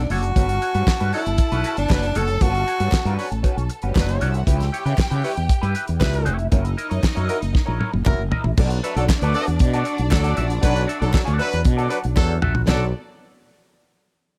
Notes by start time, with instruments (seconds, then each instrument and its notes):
Already playing: tenor saxophone D4
0.10 fretless electric bass F#1, clean electric guitar D4 A4 C#5, tenor saxophone F#4, open hi-hat
0.23 muted clean electric guitar stroke, closed hi-hat
0.35 fretless electric bass G1, clean electric guitar C#4 F#4 B4, string section A4 A5, kick, closed hi-hat
0.49 muted clean electric guitar stroke, closed hi-hat
0.62 clean electric guitar C#4 F#4 C#5, closed hi-hat
0.74 fretless electric bass G2, clean electric guitar C#4 F#4 B4, closed hi-hat
0.87 muted clean electric guitar stroke, kick, snare, clap
1.00 fretless electric bass G2, clean electric guitar C#4 F#4 B4, closed hi-hat
1.12 horn section F#3 D4 A4, clean electric guitar C#4 F#4 C#5, tenor saxophone E4, open hi-hat
1.26 fretless electric bass G1, muted clean electric guitar stroke, closed hi-hat
1.38 muted clean electric guitar stroke, kick, closed hi-hat
1.52 fretless electric bass B1, clean electric guitar C#4 F#4 B4, closed hi-hat
1.64 clean electric guitar C#4 F#4 B4, closed hi-hat
1.77 fretless electric bass G1, tenor saxophone D4, muted clean electric guitar stroke, closed hi-hat
1.89 fretless electric bass F#1, horn section F#3 D4 B4, muted clean electric guitar stroke, kick, snare, clap
1.92 clap
2.02 muted clean electric guitar stroke, closed hi-hat
2.15 fretless electric bass F#1, clean electric guitar C#4 F#4 C#5, tenor saxophone A4, closed hi-hat
2.28 muted clean electric guitar stroke, closed hi-hat
2.41 fretless electric bass G1, clean electric guitar C#4 F#4 B4, tenor saxophone F#4, kick, closed hi-hat
2.55 muted clean electric guitar stroke, closed hi-hat
2.67 clean electric guitar C#4 F#4 C#5, closed hi-hat
2.80 fretless electric bass G2, clean electric guitar C#4 F#4 B4, closed hi-hat
2.92 kick, snare, clap
2.95 clap
3.05 fretless electric bass G2, clean electric guitar C#4 F#4 B4, closed hi-hat
3.18 horn section F#3 D4 B4, clean electric guitar C#4 F#4 C#5, open hi-hat
3.31 fretless electric bass A1, muted clean electric guitar stroke, closed hi-hat
3.43 clean electric guitar C#4 F#4 B4, kick, closed hi-hat
3.57 fretless electric bass B1, muted clean electric guitar stroke, closed hi-hat
3.69 muted clean electric guitar stroke, closed hi-hat
3.82 fretless electric bass G1, clean electric guitar C#4 F#4 B4, closed hi-hat
3.87 string section G3 G4
3.94 fretless electric bass F#1, horn section F#3 D4 B4, string section A3 A4, kick, snare, clap
3.98 clap
4.04 string section B3 B4
4.08 string section C#4 C#5, muted clean electric guitar stroke, closed hi-hat
4.21 fretless electric bass C2, clean electric guitar C#4 F#4 C#5, string section D4 D5, closed hi-hat
4.30 string section E4 E5
4.34 string section F#5, muted clean electric guitar stroke, closed hi-hat
4.39 string section F#4
4.47 fretless electric bass C#2, clean electric guitar E4 G4 B4, string section G4 G5, kick, closed hi-hat
4.60 muted clean electric guitar stroke, snare, closed hi-hat
4.72 clean electric guitar E4 G4 C#5, closed hi-hat
4.85 fretless electric bass C#3, clean electric guitar E4 G4 B4, closed hi-hat
4.97 muted clean electric guitar stroke, kick, snare, clap
5.00 clap
5.11 fretless electric bass C#3, clean electric guitar E4 G4 B4, closed hi-hat
5.23 horn section G3 E4 B4, clean electric guitar E4 G4 C#5, open hi-hat
5.37 fretless electric bass E2, muted clean electric guitar stroke, closed hi-hat
5.49 muted clean electric guitar stroke, kick, closed hi-hat
5.62 fretless electric bass G2, clean electric guitar E4 G4 B4, closed hi-hat
5.74 clean electric guitar E4 G4 B4, closed hi-hat
5.87 fretless electric bass E2, muted clean electric guitar stroke, closed hi-hat
6.00 fretless electric bass C#2, horn section G3 E4 B4, muted clean electric guitar stroke, kick, snare, clap
6.03 clap
6.13 muted clean electric guitar stroke, closed hi-hat
6.25 fretless electric bass F1, clean electric guitar E4 G4 C#5, closed hi-hat
6.39 muted clean electric guitar stroke, closed hi-hat
6.52 fretless electric bass F#1, string section D#4 D#5, clean electric guitar E4 A#4 C#5, kick, closed hi-hat
6.65 muted clean electric guitar stroke, closed hi-hat
6.77 clean electric guitar E4 A#4 D#5, closed hi-hat
6.90 fretless electric bass F#2, clean electric guitar E4 A#4 C#5, closed hi-hat
7.02 muted clean electric guitar stroke, kick, snare, clap
7.05 clap
7.15 fretless electric bass F#2, clean electric guitar E4 A#4 C#5, closed hi-hat
7.28 horn section F#3 E4 A#4, clean electric guitar E4 A#4 D#5, closed hi-hat
7.41 fretless electric bass F#1, muted clean electric guitar stroke, closed hi-hat
7.53 muted clean electric guitar stroke, kick, snare
7.66 fretless electric bass A#1, clean electric guitar E4 A#4 C#5
7.79 clean electric guitar E4 A#4 C#5, high tom
7.93 fretless electric bass F#1, muted clean electric guitar stroke, high tom
8.05 fretless electric bass E1, horn section F#3 E4 A#4, muted clean electric guitar stroke, kick, clap, mid tom
8.19 fretless electric bass F#1, muted clean electric guitar stroke
8.31 clean electric guitar E4 A#4 D#5, floor tom
8.44 fretless electric bass A1, muted clean electric guitar stroke, floor tom
8.57 fretless electric bass B1, string section D4 D5, clean electric guitar F#4 A4 D5, kick, crash
8.70 muted clean electric guitar stroke, closed hi-hat
8.83 horn section F#3 D4 B4, clean electric guitar F#4 A4 E5, closed hi-hat
8.96 fretless electric bass B1, horn section F#3 D4 A4, clean electric guitar F#4 A4 D5, closed hi-hat
9.09 kick, snare, clap
9.11 clap
9.21 fretless electric bass D2, horn section F#3 D4 B4, clean electric guitar F#4 A4 D5, closed hi-hat
9.34 horn section B3 A4 D5, clean electric guitar F#4 A4 E5, open hi-hat
9.47 fretless electric bass E2, muted clean electric guitar stroke, closed hi-hat
9.59 fretless electric bass B2, muted clean electric guitar stroke, kick, closed hi-hat
9.73 clean electric guitar F#4 A4 D5, closed hi-hat
9.85 clean electric guitar F#4 A4 D5, closed hi-hat
9.98 fretless electric bass B1, muted clean electric guitar stroke, closed hi-hat
10.11 fretless electric bass D2, horn section F#3 D4 A4, muted clean electric guitar stroke, kick, snare, clap
10.13 clap
10.23 clean electric guitar F#4 A4 D5, closed hi-hat
10.36 fretless electric bass A#1, clean electric guitar F#4 A4 E5, closed hi-hat
10.48 muted clean electric guitar stroke, closed hi-hat
10.61 fretless electric bass B1, horn section F#3 D4 B4, clean electric guitar F#4 A4 D5, kick, closed hi-hat
10.74 muted clean electric guitar stroke, closed hi-hat
10.87 clean electric guitar F#4 A4 E5, closed hi-hat
11.00 fretless electric bass B1, horn section F#3 D4 A4, clean electric guitar F#4 A4 D5, closed hi-hat
11.13 horn section F#3 D4 A4, muted clean electric guitar stroke, kick, snare, clap
11.16 clap
11.25 fretless electric bass D2, clean electric guitar F#4 A4 D5, closed hi-hat
11.38 horn section F#3 D4 B4, clean electric guitar F#4 A4 E5, open hi-hat
11.51 fretless electric bass E2, muted clean electric guitar stroke, closed hi-hat
11.65 fretless electric bass B2, muted clean electric guitar stroke, kick, closed hi-hat
11.77 horn section F#3 D4 A4, clean electric guitar F#4 A4 D5, closed hi-hat
11.89 horn section F#3 D4 B4, clean electric guitar F#4 A4 D5, closed hi-hat
12.03 fretless electric bass B1, muted clean electric guitar stroke, closed hi-hat
12.16 fretless electric bass E2, horn section F#3 D4 A4, muted clean electric guitar stroke, kick, snare, clap
12.29 muted clean electric guitar stroke
12.42 fretless electric bass A#1, clean electric guitar F#4 A4 E5, mid tom
12.55 muted clean electric guitar stroke, floor tom
12.68 fretless electric bass B1, horn section F#3 D4 A4, string section B3 A4 D5, clean electric guitar F#4 A4 D5, snare, clap, floor tom, crash